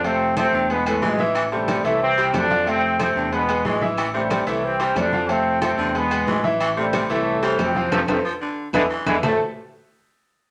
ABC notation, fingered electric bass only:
X:1
M:4/4
L:1/8
Q:1/4=183
K:Am
V:1 name="Fingered electric bass" clef=bass
F,,3 E,,3 A,,,2- | A,,,3 C,,3 F,,2- | F,,3 E,,3 A,,,2- | A,,,3 C,,3 F,,2- |
F,,3 E,,3 A,,,2- | A,,,3 C,,3 F,,2 | F,, F,, z3 E,, z E,, | A,,, z6 z |]